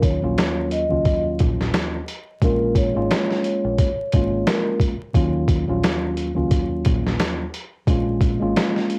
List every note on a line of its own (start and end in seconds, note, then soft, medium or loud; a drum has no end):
0.00 0.18 D#2 loud
0.00 0.18 D#2 medium
0.00 0.18 F#3 medium
0.00 0.19 A#3 medium
0.00 0.19 C#4 medium
0.00 0.19 F4 medium
0.00 0.67 C#5 medium
0.00 kick loud
0.00 closed hi-hat medium
0.22 0.36 A#1 medium
0.22 0.84 D#2 medium
0.22 0.85 F#3 medium
0.22 0.85 A#3 medium
0.22 0.85 C#4 medium
0.22 0.86 F4 loud
0.38 snare loud
0.38 closed hi-hat medium
0.71 1.23 D#5 medium
0.71 closed hi-hat medium
0.88 1.04 C#2 medium
0.88 1.98 D#2 medium
0.88 1.99 F#3 medium
0.88 1.99 A#3 medium
0.88 1.99 C#4 medium
0.88 2.00 F4 medium
1.05 kick medium
1.05 closed hi-hat medium
1.26 muted fingered electric bass stroke soft
1.39 1.71 A#1 loud
1.39 kick medium
1.39 closed hi-hat medium
1.61 snare soft
1.74 snare loud
1.74 closed hi-hat medium
2.08 closed hi-hat medium
2.42 2.90 A#1 loud
2.42 2.91 G#3 medium
2.42 2.92 A#3 medium
2.42 2.92 C#4 medium
2.42 2.93 F4 medium
2.42 2.74 A#4 loud
2.42 kick loud
2.42 closed hi-hat medium
2.75 3.41 C#5 medium
2.75 kick loud
2.75 closed hi-hat medium
2.94 3.09 G#1 medium
2.94 3.88 G#3 medium
2.94 3.88 A#3 medium
2.94 3.89 C#4 medium
2.94 3.89 F4 loud
3.11 snare loud
3.11 closed hi-hat medium
3.31 snare soft
3.44 4.42 C#5 medium
3.44 closed hi-hat medium
3.64 3.77 A#1 medium
3.78 kick medium
3.78 closed hi-hat medium
3.99 muted fingered electric bass stroke soft
4.12 4.44 G#1 medium
4.12 4.93 G#3 medium
4.12 4.94 A#3 medium
4.12 4.94 C#4 medium
4.12 4.94 F4 loud
4.12 kick medium
4.12 closed hi-hat medium
4.47 4.78 A#4 medium
4.47 snare loud
4.47 closed hi-hat medium
4.80 kick medium
4.80 closed hi-hat medium
5.13 5.63 D#2 medium
5.13 5.63 D#2 loud
5.13 5.64 F#3 medium
5.13 5.64 A#3 medium
5.13 5.64 C#4 medium
5.13 5.65 F4 medium
5.13 kick loud
5.13 closed hi-hat medium
5.48 kick loud
5.48 closed hi-hat medium
5.67 5.82 A#1 medium
5.67 6.30 D#2 medium
5.67 6.30 F#3 medium
5.67 6.30 A#3 medium
5.67 6.31 C#4 medium
5.67 6.31 F4 loud
5.84 snare loud
5.84 closed hi-hat medium
6.17 closed hi-hat medium
6.34 6.50 C#2 medium
6.34 7.44 D#2 medium
6.34 7.44 F#3 medium
6.34 7.44 A#3 medium
6.34 7.45 C#4 medium
6.34 7.45 F4 medium
6.51 kick medium
6.51 closed hi-hat medium
6.71 muted fingered electric bass stroke soft
6.85 7.16 A#1 medium
6.85 kick medium
6.85 closed hi-hat medium
7.07 snare soft
7.20 snare loud
7.20 closed hi-hat medium
7.54 closed hi-hat medium
7.87 8.36 A#1 loud
7.87 8.37 G#3 medium
7.87 8.37 A#3 medium
7.87 8.38 C#4 medium
7.87 8.38 F4 loud
7.87 kick loud
7.87 closed hi-hat medium
8.21 kick loud
8.21 closed hi-hat medium
8.40 8.54 G#1 medium
8.40 8.99 G#3 medium
8.40 8.99 A#3 medium
8.40 8.99 C#4 medium
8.40 8.99 F4 loud
8.56 snare loud
8.56 closed hi-hat medium
8.76 snare soft
8.90 closed hi-hat medium